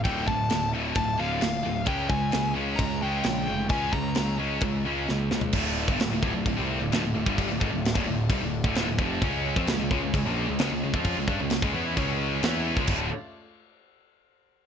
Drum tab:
CC |x---x---x---x---|x---x---x---x---|x---x---x-------|x---x---x---x---|
SD |----o-------o---|----o-------o---|----o-------o-o-|----o-------o---|
FT |----------------|----------------|---------------o|----------------|
BD |o-o-----o-------|o-o-----o-------|o-o-----o-------|o--o--o-o------o|

CC |x---x---x---x---|x---x---x---x---|x---x---x---x---|x---------------|
SD |----o-------o---|----o-------o---|----o-------o---|----------------|
FT |----------------|----------------|----------------|----------------|
BD |o-o--o--o--o--o-|o--o--o-o------o|o-o--o--o------o|o---------------|